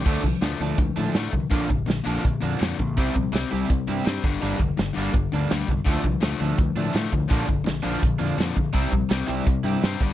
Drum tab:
CC |x---------------|----------------|----------------|----------------|
HH |----x---x---x---|x---x---x---x---|x---x---x---x---|x---x---x---x---|
SD |----o-----o-o---|----o--o----o---|----o--o----o---|----o-----o-o---|
BD |o-o-----o-----o-|o-o-----o-----o-|o-o-----o-----o-|--o-----o-----o-|

CC |----------------|----------------|----------------|
HH |x---x---x---x---|x---x---x---x---|x---x---x---x---|
SD |----o-------o---|----o-------o---|----o--o----o---|
BD |o-o-----o-----o-|o-o-----o-----o-|o-o-----o-----o-|